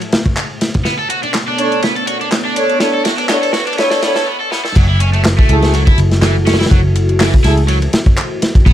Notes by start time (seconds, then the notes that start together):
Already playing: A3 G#4 E5 F#5
0.01 closed hi-hat, ride
0.12 snare, closed hi-hat, ride
0.26 kick, closed hi-hat
0.37 clap, closed hi-hat, ride
0.61 snare, closed hi-hat, ride
0.74 kick, closed hi-hat
0.85 B3 A4 C#5 D5, snare, closed hi-hat, ride
0.99 A4
1.10 F#4, closed hi-hat, ride
1.23 D4, closed hi-hat, ride
1.34 snare, clap, closed hi-hat, ride
1.48 D4
1.58 D4 A4 C#5, closed hi-hat, ride
1.72 closed hi-hat
1.82 B3, snare, closed hi-hat, ride
1.96 A4, closed hi-hat
2.07 F#4, closed hi-hat, ride
2.21 D4, closed hi-hat
2.32 snare, clap, closed hi-hat, ride
2.45 D4
2.56 D4 A4 C#5, closed hi-hat, ride
2.70 closed hi-hat
2.80 B3 D4 A4 B4 C#5, snare, closed hi-hat, ride
2.94 A4
3.05 F#4, snare, closed hi-hat, ride
3.18 D4, closed hi-hat, ride
3.29 B3 D4 A4 C#5, snare, clap, closed hi-hat, ride
3.42 A4, ride
3.53 F#4, snare, closed hi-hat, ride
3.60 ride
3.67 D4, closed hi-hat, ride
3.73 ride
3.78 B3 D4 A4 C#5, snare, closed hi-hat, ride
3.91 A4, snare, closed hi-hat, ride
4.02 B3 D4 A4 C#5, snare, closed hi-hat, ride
4.15 A4, snare, closed hi-hat
4.27 B3
4.40 A4
4.52 B3, snare
4.65 A4, snare
4.75 F#1 F#3 E4 F#4 A4, kick, closed hi-hat, crash, ride
4.89 E4
5.00 C#4, closed hi-hat, ride
5.13 A3, closed hi-hat, ride
5.25 snare, clap, closed hi-hat, ride
5.38 A3, kick
5.49 C#2 E4 G#4 A4, closed hi-hat, ride
5.63 snare, closed hi-hat
5.74 F#3, closed hi-hat, ride
5.87 E4, kick, closed hi-hat
5.98 F#1, closed hi-hat, ride
6.11 snare, closed hi-hat
6.22 E3, snare, clap, closed hi-hat, ride
6.46 C#4, snare, closed hi-hat, ride
6.53 snare, ride
6.60 E4, snare, closed hi-hat, ride
6.66 snare, ride
6.71 F#1 F#3, kick, closed hi-hat, ride
6.96 closed hi-hat, ride
7.09 closed hi-hat
7.20 E3, snare, clap, closed hi-hat, open hi-hat
7.34 kick
7.44 C#2 E4 G#4 A4, snare, closed hi-hat, ride
7.57 closed hi-hat
7.68 F#3, closed hi-hat, ride
7.82 closed hi-hat, ride
7.93 snare, closed hi-hat, ride
8.06 kick, closed hi-hat
8.17 clap, closed hi-hat, ride
8.42 snare, closed hi-hat, ride
8.55 kick, closed hi-hat
8.66 B1 A3 B3 D4 B4 C#5, kick, closed hi-hat, ride